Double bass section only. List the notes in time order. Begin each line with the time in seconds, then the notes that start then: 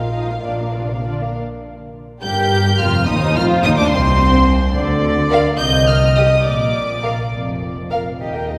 Already playing: A#1
0.44 A#1
2.23 G1
2.80 F1
3.08 D#2
3.37 F1
3.66 D#2
3.93 C2
4.77 D2
5.61 C2
6.46 A#1
7.31 F1
8.19 D#2